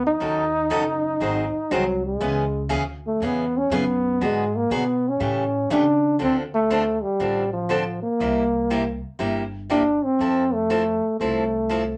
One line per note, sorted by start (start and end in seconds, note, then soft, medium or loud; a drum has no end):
0.00 0.19 D2 medium
0.07 1.74 D#4 loud
0.20 0.69 D#2 medium
0.20 0.43 D#3 medium
0.20 0.43 F#3 medium
0.20 0.43 C#4 medium
0.20 0.43 D#4 medium
0.20 0.44 A4 medium
0.70 1.19 F#1 medium
0.70 0.82 D#3 medium
0.70 0.83 F#3 medium
0.70 0.83 C#4 medium
0.70 0.83 D#4 medium
0.70 0.83 A4 medium
1.20 1.51 G#1 medium
1.20 1.43 D#3 medium
1.20 1.43 F#3 medium
1.20 1.44 C4 medium
1.20 1.43 D#4 medium
1.20 1.44 G#4 medium
1.54 muted upright bass stroke soft
1.71 2.20 C2 medium
1.71 1.83 D#3 medium
1.71 1.83 F#3 medium
1.71 2.05 F#3 medium
1.71 1.83 C4 medium
1.71 1.83 D#4 loud
1.71 1.84 G#4 medium
2.06 2.67 G#3 medium
2.20 2.69 C#2 medium
2.20 2.43 C#3 medium
2.20 2.43 E3 medium
2.20 2.43 B3 medium
2.20 2.43 C#4 medium
2.20 2.44 G#4 medium
2.69 3.19 D2 medium
2.69 2.82 C#3 medium
2.69 2.82 E3 medium
2.69 2.82 B3 medium
2.69 2.82 C#4 medium
2.69 2.83 G#4 medium
3.07 3.26 A3 medium
3.20 3.69 E2 medium
3.20 3.44 C#3 medium
3.20 3.44 E3 medium
3.20 3.44 B3 medium
3.20 3.44 C#4 medium
3.20 3.44 G#4 medium
3.25 3.59 B3 loud
3.58 3.76 C#4 medium
3.70 4.19 F#2 medium
3.70 3.83 C#3 medium
3.70 3.83 E3 medium
3.70 3.83 B3 loud
3.70 3.83 C#4 loud
3.70 3.83 G#4 loud
3.75 4.23 B3 loud
4.21 4.69 G#2 medium
4.21 4.44 D3 medium
4.21 4.44 F#3 medium
4.21 4.43 B3 medium
4.21 4.44 F#4 medium
4.21 4.44 G#4 medium
4.25 4.58 G#3 medium
4.56 4.76 A#3 medium
4.70 5.19 B2 medium
4.70 4.83 D3 medium
4.70 4.83 F#3 medium
4.70 4.83 B3 medium
4.70 4.83 F#4 medium
4.70 4.83 G#4 loud
4.75 5.10 B3 medium
5.09 5.71 C#4 medium
5.20 5.69 A2 medium
5.20 5.43 C#3 medium
5.20 5.43 E3 medium
5.20 5.43 A3 medium
5.20 5.43 C#4 medium
5.20 5.43 G4 medium
5.70 6.19 C#3 medium
5.70 5.82 C#3 medium
5.70 5.83 E3 medium
5.70 5.83 A3 loud
5.70 5.83 C#4 medium
5.70 6.18 D4 loud
5.70 5.83 G4 medium
6.19 7.01 D2 medium
6.19 6.42 D3 medium
6.19 6.42 F3 medium
6.19 6.43 C4 medium
6.19 6.37 C4 medium
6.19 6.42 D4 medium
6.19 6.42 A4 medium
6.55 7.04 A3 loud
6.70 6.82 D3 medium
6.70 6.82 F3 medium
6.70 6.82 C4 medium
6.70 6.82 D4 medium
6.70 6.83 A4 medium
7.02 7.53 G3 medium
7.20 8.00 A1 medium
7.20 7.42 D3 medium
7.20 7.43 F3 medium
7.20 7.43 C4 medium
7.20 7.43 D4 medium
7.20 7.43 A4 medium
7.53 8.00 F3 medium
7.69 7.82 D3 medium
7.69 7.82 F3 medium
7.69 7.82 C4 medium
7.69 7.82 D4 medium
7.69 7.82 A4 medium
8.03 8.99 A#3 medium
8.20 9.00 C2 medium
8.20 8.43 C3 medium
8.20 8.43 G3 medium
8.20 8.43 A#3 medium
8.20 8.43 E4 medium
8.20 8.43 G4 medium
8.70 8.82 C3 medium
8.70 8.82 G3 medium
8.70 8.82 A#3 medium
8.70 8.82 E4 medium
8.70 8.82 G4 medium
9.19 9.99 G1 medium
9.19 9.42 C3 medium
9.19 9.42 G3 medium
9.19 9.42 A#3 medium
9.19 9.42 E4 medium
9.19 9.42 G4 medium
9.70 9.82 C3 medium
9.70 9.82 G3 medium
9.70 9.82 A#3 medium
9.70 10.06 D4 loud
9.70 9.82 E4 medium
9.70 9.82 G4 medium
10.04 10.55 C4 loud
10.19 10.99 F2 medium
10.19 10.42 F3 medium
10.19 10.43 C4 medium
10.19 10.43 E4 medium
10.19 10.43 A4 medium
10.54 11.19 A3 medium
10.70 10.82 F3 medium
10.70 10.82 C4 medium
10.70 10.82 E4 medium
10.70 10.82 A4 medium
11.20 11.97 C2 medium
11.20 11.42 F3 medium
11.20 11.97 A3 medium
11.20 11.43 C4 medium
11.20 11.43 E4 medium
11.20 11.43 A4 medium
11.69 11.81 F3 medium
11.69 11.82 C4 medium
11.69 11.82 E4 medium
11.69 11.82 A4 medium